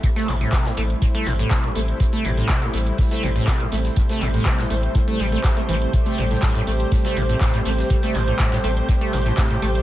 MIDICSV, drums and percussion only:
0, 0, Header, 1, 2, 480
1, 0, Start_track
1, 0, Key_signature, 0, "minor"
1, 0, Tempo, 491803
1, 33, Time_signature, 4, 2, 24, 8
1, 9586, End_track
2, 0, Start_track
2, 0, Title_t, "Drums"
2, 32, Note_on_c, 9, 42, 83
2, 33, Note_on_c, 9, 36, 118
2, 34, Note_off_c, 9, 42, 0
2, 34, Note_on_c, 9, 42, 79
2, 131, Note_off_c, 9, 36, 0
2, 132, Note_off_c, 9, 42, 0
2, 159, Note_on_c, 9, 38, 46
2, 159, Note_on_c, 9, 42, 37
2, 256, Note_off_c, 9, 38, 0
2, 256, Note_off_c, 9, 42, 0
2, 274, Note_on_c, 9, 39, 37
2, 274, Note_on_c, 9, 46, 107
2, 275, Note_on_c, 9, 42, 69
2, 372, Note_off_c, 9, 39, 0
2, 372, Note_off_c, 9, 42, 0
2, 372, Note_off_c, 9, 46, 0
2, 399, Note_on_c, 9, 42, 51
2, 496, Note_off_c, 9, 42, 0
2, 513, Note_on_c, 9, 38, 113
2, 513, Note_on_c, 9, 39, 118
2, 513, Note_on_c, 9, 42, 75
2, 514, Note_on_c, 9, 36, 121
2, 518, Note_off_c, 9, 42, 0
2, 518, Note_on_c, 9, 42, 82
2, 610, Note_off_c, 9, 38, 0
2, 611, Note_off_c, 9, 36, 0
2, 611, Note_off_c, 9, 39, 0
2, 615, Note_off_c, 9, 42, 0
2, 638, Note_on_c, 9, 38, 57
2, 638, Note_on_c, 9, 42, 35
2, 736, Note_off_c, 9, 38, 0
2, 736, Note_off_c, 9, 42, 0
2, 753, Note_on_c, 9, 46, 102
2, 754, Note_on_c, 9, 42, 60
2, 850, Note_off_c, 9, 46, 0
2, 851, Note_off_c, 9, 42, 0
2, 878, Note_on_c, 9, 42, 53
2, 976, Note_off_c, 9, 42, 0
2, 994, Note_on_c, 9, 36, 118
2, 994, Note_on_c, 9, 42, 77
2, 995, Note_off_c, 9, 42, 0
2, 995, Note_on_c, 9, 42, 89
2, 1091, Note_off_c, 9, 36, 0
2, 1092, Note_off_c, 9, 42, 0
2, 1116, Note_on_c, 9, 42, 42
2, 1119, Note_off_c, 9, 42, 0
2, 1119, Note_on_c, 9, 42, 35
2, 1217, Note_off_c, 9, 42, 0
2, 1222, Note_on_c, 9, 42, 60
2, 1234, Note_on_c, 9, 38, 42
2, 1234, Note_on_c, 9, 46, 98
2, 1319, Note_off_c, 9, 42, 0
2, 1331, Note_off_c, 9, 46, 0
2, 1332, Note_off_c, 9, 38, 0
2, 1359, Note_on_c, 9, 42, 53
2, 1456, Note_off_c, 9, 42, 0
2, 1469, Note_on_c, 9, 38, 107
2, 1473, Note_on_c, 9, 39, 116
2, 1474, Note_on_c, 9, 36, 124
2, 1474, Note_on_c, 9, 42, 71
2, 1475, Note_off_c, 9, 42, 0
2, 1475, Note_on_c, 9, 42, 79
2, 1567, Note_off_c, 9, 38, 0
2, 1571, Note_off_c, 9, 36, 0
2, 1571, Note_off_c, 9, 39, 0
2, 1573, Note_off_c, 9, 42, 0
2, 1598, Note_on_c, 9, 42, 35
2, 1696, Note_off_c, 9, 42, 0
2, 1712, Note_on_c, 9, 46, 102
2, 1714, Note_on_c, 9, 42, 73
2, 1810, Note_off_c, 9, 46, 0
2, 1812, Note_off_c, 9, 42, 0
2, 1837, Note_on_c, 9, 42, 51
2, 1935, Note_off_c, 9, 42, 0
2, 1952, Note_on_c, 9, 42, 76
2, 1953, Note_on_c, 9, 36, 121
2, 1958, Note_off_c, 9, 42, 0
2, 1958, Note_on_c, 9, 42, 82
2, 2051, Note_off_c, 9, 36, 0
2, 2055, Note_off_c, 9, 42, 0
2, 2077, Note_on_c, 9, 42, 35
2, 2083, Note_off_c, 9, 42, 0
2, 2083, Note_on_c, 9, 42, 40
2, 2181, Note_off_c, 9, 42, 0
2, 2192, Note_on_c, 9, 46, 107
2, 2193, Note_on_c, 9, 42, 66
2, 2290, Note_off_c, 9, 42, 0
2, 2290, Note_off_c, 9, 46, 0
2, 2317, Note_on_c, 9, 42, 50
2, 2415, Note_off_c, 9, 42, 0
2, 2426, Note_on_c, 9, 38, 121
2, 2431, Note_on_c, 9, 42, 86
2, 2432, Note_off_c, 9, 42, 0
2, 2432, Note_on_c, 9, 39, 121
2, 2432, Note_on_c, 9, 42, 75
2, 2433, Note_on_c, 9, 36, 121
2, 2524, Note_off_c, 9, 38, 0
2, 2530, Note_off_c, 9, 39, 0
2, 2530, Note_off_c, 9, 42, 0
2, 2531, Note_off_c, 9, 36, 0
2, 2556, Note_on_c, 9, 42, 42
2, 2557, Note_off_c, 9, 42, 0
2, 2557, Note_on_c, 9, 42, 34
2, 2654, Note_off_c, 9, 42, 0
2, 2670, Note_on_c, 9, 46, 105
2, 2673, Note_on_c, 9, 42, 57
2, 2768, Note_off_c, 9, 46, 0
2, 2771, Note_off_c, 9, 42, 0
2, 2796, Note_on_c, 9, 42, 48
2, 2797, Note_off_c, 9, 42, 0
2, 2797, Note_on_c, 9, 42, 40
2, 2895, Note_off_c, 9, 42, 0
2, 2908, Note_on_c, 9, 46, 86
2, 2912, Note_on_c, 9, 42, 77
2, 2913, Note_on_c, 9, 36, 123
2, 3005, Note_off_c, 9, 46, 0
2, 3009, Note_off_c, 9, 42, 0
2, 3010, Note_off_c, 9, 36, 0
2, 3036, Note_on_c, 9, 38, 54
2, 3037, Note_on_c, 9, 42, 33
2, 3134, Note_off_c, 9, 38, 0
2, 3135, Note_off_c, 9, 42, 0
2, 3151, Note_on_c, 9, 46, 106
2, 3155, Note_on_c, 9, 42, 68
2, 3249, Note_off_c, 9, 46, 0
2, 3252, Note_off_c, 9, 42, 0
2, 3277, Note_on_c, 9, 42, 50
2, 3374, Note_off_c, 9, 42, 0
2, 3391, Note_on_c, 9, 42, 82
2, 3392, Note_off_c, 9, 42, 0
2, 3392, Note_on_c, 9, 36, 121
2, 3392, Note_on_c, 9, 38, 114
2, 3392, Note_on_c, 9, 39, 105
2, 3392, Note_on_c, 9, 42, 69
2, 3489, Note_off_c, 9, 38, 0
2, 3489, Note_off_c, 9, 39, 0
2, 3489, Note_off_c, 9, 42, 0
2, 3490, Note_off_c, 9, 36, 0
2, 3516, Note_on_c, 9, 42, 35
2, 3614, Note_off_c, 9, 42, 0
2, 3628, Note_on_c, 9, 42, 62
2, 3631, Note_on_c, 9, 46, 104
2, 3638, Note_on_c, 9, 38, 52
2, 3726, Note_off_c, 9, 42, 0
2, 3729, Note_off_c, 9, 46, 0
2, 3735, Note_off_c, 9, 38, 0
2, 3749, Note_on_c, 9, 38, 36
2, 3756, Note_on_c, 9, 42, 52
2, 3847, Note_off_c, 9, 38, 0
2, 3853, Note_off_c, 9, 42, 0
2, 3868, Note_on_c, 9, 42, 89
2, 3871, Note_off_c, 9, 42, 0
2, 3871, Note_on_c, 9, 42, 75
2, 3872, Note_on_c, 9, 36, 122
2, 3968, Note_off_c, 9, 42, 0
2, 3969, Note_off_c, 9, 36, 0
2, 3995, Note_on_c, 9, 42, 33
2, 3999, Note_on_c, 9, 38, 49
2, 4093, Note_off_c, 9, 42, 0
2, 4097, Note_off_c, 9, 38, 0
2, 4111, Note_on_c, 9, 39, 34
2, 4111, Note_on_c, 9, 46, 106
2, 4113, Note_on_c, 9, 42, 64
2, 4208, Note_off_c, 9, 39, 0
2, 4209, Note_off_c, 9, 46, 0
2, 4210, Note_off_c, 9, 42, 0
2, 4236, Note_on_c, 9, 42, 49
2, 4334, Note_off_c, 9, 42, 0
2, 4346, Note_on_c, 9, 42, 85
2, 4348, Note_on_c, 9, 38, 118
2, 4351, Note_off_c, 9, 42, 0
2, 4351, Note_on_c, 9, 36, 122
2, 4351, Note_on_c, 9, 39, 113
2, 4351, Note_on_c, 9, 42, 74
2, 4445, Note_off_c, 9, 38, 0
2, 4448, Note_off_c, 9, 39, 0
2, 4448, Note_off_c, 9, 42, 0
2, 4449, Note_off_c, 9, 36, 0
2, 4475, Note_on_c, 9, 42, 33
2, 4478, Note_on_c, 9, 38, 50
2, 4573, Note_off_c, 9, 42, 0
2, 4575, Note_off_c, 9, 38, 0
2, 4591, Note_on_c, 9, 46, 102
2, 4592, Note_on_c, 9, 42, 56
2, 4688, Note_off_c, 9, 46, 0
2, 4690, Note_off_c, 9, 42, 0
2, 4716, Note_on_c, 9, 42, 48
2, 4814, Note_off_c, 9, 42, 0
2, 4829, Note_on_c, 9, 42, 63
2, 4831, Note_off_c, 9, 42, 0
2, 4831, Note_on_c, 9, 36, 118
2, 4831, Note_on_c, 9, 42, 76
2, 4928, Note_off_c, 9, 42, 0
2, 4929, Note_off_c, 9, 36, 0
2, 4956, Note_on_c, 9, 42, 35
2, 5053, Note_off_c, 9, 42, 0
2, 5070, Note_on_c, 9, 46, 102
2, 5074, Note_on_c, 9, 38, 44
2, 5074, Note_on_c, 9, 42, 64
2, 5167, Note_off_c, 9, 46, 0
2, 5172, Note_off_c, 9, 38, 0
2, 5172, Note_off_c, 9, 42, 0
2, 5195, Note_on_c, 9, 42, 49
2, 5293, Note_off_c, 9, 42, 0
2, 5308, Note_on_c, 9, 38, 111
2, 5309, Note_on_c, 9, 42, 79
2, 5310, Note_off_c, 9, 42, 0
2, 5310, Note_on_c, 9, 39, 103
2, 5310, Note_on_c, 9, 42, 70
2, 5312, Note_on_c, 9, 36, 122
2, 5406, Note_off_c, 9, 38, 0
2, 5408, Note_off_c, 9, 39, 0
2, 5408, Note_off_c, 9, 42, 0
2, 5409, Note_off_c, 9, 36, 0
2, 5436, Note_on_c, 9, 42, 35
2, 5534, Note_off_c, 9, 42, 0
2, 5552, Note_on_c, 9, 46, 105
2, 5555, Note_on_c, 9, 42, 60
2, 5649, Note_off_c, 9, 46, 0
2, 5653, Note_off_c, 9, 42, 0
2, 5677, Note_on_c, 9, 42, 50
2, 5774, Note_off_c, 9, 42, 0
2, 5791, Note_on_c, 9, 42, 76
2, 5792, Note_off_c, 9, 42, 0
2, 5792, Note_on_c, 9, 36, 114
2, 5792, Note_on_c, 9, 42, 82
2, 5889, Note_off_c, 9, 36, 0
2, 5890, Note_off_c, 9, 42, 0
2, 5912, Note_on_c, 9, 42, 46
2, 5917, Note_off_c, 9, 42, 0
2, 5917, Note_on_c, 9, 42, 34
2, 6014, Note_off_c, 9, 42, 0
2, 6031, Note_on_c, 9, 46, 101
2, 6035, Note_on_c, 9, 42, 67
2, 6129, Note_off_c, 9, 46, 0
2, 6133, Note_off_c, 9, 42, 0
2, 6157, Note_on_c, 9, 42, 49
2, 6254, Note_off_c, 9, 42, 0
2, 6268, Note_on_c, 9, 38, 114
2, 6268, Note_on_c, 9, 42, 89
2, 6271, Note_off_c, 9, 42, 0
2, 6271, Note_on_c, 9, 39, 108
2, 6271, Note_on_c, 9, 42, 75
2, 6272, Note_on_c, 9, 36, 123
2, 6366, Note_off_c, 9, 38, 0
2, 6368, Note_off_c, 9, 39, 0
2, 6369, Note_off_c, 9, 42, 0
2, 6370, Note_off_c, 9, 36, 0
2, 6396, Note_on_c, 9, 42, 32
2, 6399, Note_off_c, 9, 42, 0
2, 6399, Note_on_c, 9, 42, 46
2, 6496, Note_off_c, 9, 42, 0
2, 6511, Note_on_c, 9, 42, 66
2, 6511, Note_on_c, 9, 46, 96
2, 6609, Note_off_c, 9, 42, 0
2, 6609, Note_off_c, 9, 46, 0
2, 6633, Note_on_c, 9, 42, 40
2, 6636, Note_off_c, 9, 42, 0
2, 6636, Note_on_c, 9, 42, 51
2, 6734, Note_off_c, 9, 42, 0
2, 6749, Note_on_c, 9, 46, 74
2, 6752, Note_on_c, 9, 36, 112
2, 6752, Note_on_c, 9, 42, 76
2, 6847, Note_off_c, 9, 46, 0
2, 6849, Note_off_c, 9, 42, 0
2, 6850, Note_off_c, 9, 36, 0
2, 6877, Note_on_c, 9, 42, 35
2, 6881, Note_on_c, 9, 38, 58
2, 6974, Note_off_c, 9, 42, 0
2, 6979, Note_off_c, 9, 38, 0
2, 6992, Note_on_c, 9, 42, 65
2, 6993, Note_on_c, 9, 46, 100
2, 7090, Note_off_c, 9, 42, 0
2, 7090, Note_off_c, 9, 46, 0
2, 7118, Note_on_c, 9, 42, 49
2, 7119, Note_off_c, 9, 42, 0
2, 7119, Note_on_c, 9, 42, 40
2, 7216, Note_off_c, 9, 42, 0
2, 7230, Note_on_c, 9, 38, 116
2, 7233, Note_on_c, 9, 36, 121
2, 7233, Note_on_c, 9, 39, 102
2, 7233, Note_on_c, 9, 42, 91
2, 7328, Note_off_c, 9, 38, 0
2, 7330, Note_off_c, 9, 36, 0
2, 7330, Note_off_c, 9, 39, 0
2, 7331, Note_off_c, 9, 42, 0
2, 7357, Note_on_c, 9, 42, 34
2, 7454, Note_off_c, 9, 42, 0
2, 7461, Note_on_c, 9, 38, 49
2, 7470, Note_on_c, 9, 42, 71
2, 7472, Note_on_c, 9, 46, 101
2, 7558, Note_off_c, 9, 38, 0
2, 7568, Note_off_c, 9, 42, 0
2, 7570, Note_off_c, 9, 46, 0
2, 7597, Note_on_c, 9, 42, 52
2, 7602, Note_on_c, 9, 38, 42
2, 7695, Note_off_c, 9, 42, 0
2, 7699, Note_off_c, 9, 38, 0
2, 7712, Note_on_c, 9, 42, 78
2, 7713, Note_on_c, 9, 36, 112
2, 7810, Note_off_c, 9, 42, 0
2, 7811, Note_off_c, 9, 36, 0
2, 7836, Note_on_c, 9, 38, 52
2, 7837, Note_on_c, 9, 42, 34
2, 7934, Note_off_c, 9, 38, 0
2, 7934, Note_off_c, 9, 42, 0
2, 7950, Note_on_c, 9, 42, 61
2, 7951, Note_on_c, 9, 39, 34
2, 7952, Note_on_c, 9, 46, 101
2, 8047, Note_off_c, 9, 42, 0
2, 8049, Note_off_c, 9, 39, 0
2, 8049, Note_off_c, 9, 46, 0
2, 8077, Note_on_c, 9, 42, 51
2, 8175, Note_off_c, 9, 42, 0
2, 8188, Note_on_c, 9, 38, 109
2, 8189, Note_on_c, 9, 42, 95
2, 8192, Note_off_c, 9, 42, 0
2, 8192, Note_on_c, 9, 39, 111
2, 8192, Note_on_c, 9, 42, 75
2, 8194, Note_on_c, 9, 36, 118
2, 8286, Note_off_c, 9, 38, 0
2, 8290, Note_off_c, 9, 39, 0
2, 8290, Note_off_c, 9, 42, 0
2, 8291, Note_off_c, 9, 36, 0
2, 8317, Note_on_c, 9, 42, 34
2, 8323, Note_on_c, 9, 38, 53
2, 8415, Note_off_c, 9, 42, 0
2, 8420, Note_off_c, 9, 38, 0
2, 8433, Note_on_c, 9, 46, 95
2, 8440, Note_on_c, 9, 42, 64
2, 8530, Note_off_c, 9, 46, 0
2, 8537, Note_off_c, 9, 42, 0
2, 8558, Note_on_c, 9, 42, 52
2, 8656, Note_off_c, 9, 42, 0
2, 8673, Note_on_c, 9, 42, 74
2, 8674, Note_on_c, 9, 36, 112
2, 8677, Note_off_c, 9, 42, 0
2, 8677, Note_on_c, 9, 42, 88
2, 8772, Note_off_c, 9, 36, 0
2, 8774, Note_off_c, 9, 42, 0
2, 8796, Note_on_c, 9, 42, 38
2, 8797, Note_off_c, 9, 42, 0
2, 8797, Note_on_c, 9, 42, 34
2, 8895, Note_off_c, 9, 42, 0
2, 8905, Note_on_c, 9, 38, 44
2, 8911, Note_on_c, 9, 42, 63
2, 8912, Note_on_c, 9, 46, 100
2, 9003, Note_off_c, 9, 38, 0
2, 9009, Note_off_c, 9, 42, 0
2, 9009, Note_off_c, 9, 46, 0
2, 9037, Note_on_c, 9, 42, 51
2, 9135, Note_off_c, 9, 42, 0
2, 9147, Note_on_c, 9, 38, 104
2, 9151, Note_on_c, 9, 39, 108
2, 9151, Note_on_c, 9, 42, 75
2, 9154, Note_on_c, 9, 36, 117
2, 9245, Note_off_c, 9, 38, 0
2, 9249, Note_off_c, 9, 39, 0
2, 9249, Note_off_c, 9, 42, 0
2, 9251, Note_off_c, 9, 36, 0
2, 9277, Note_on_c, 9, 42, 36
2, 9374, Note_off_c, 9, 42, 0
2, 9392, Note_on_c, 9, 46, 100
2, 9395, Note_on_c, 9, 42, 60
2, 9489, Note_off_c, 9, 46, 0
2, 9493, Note_off_c, 9, 42, 0
2, 9518, Note_on_c, 9, 42, 55
2, 9586, Note_off_c, 9, 42, 0
2, 9586, End_track
0, 0, End_of_file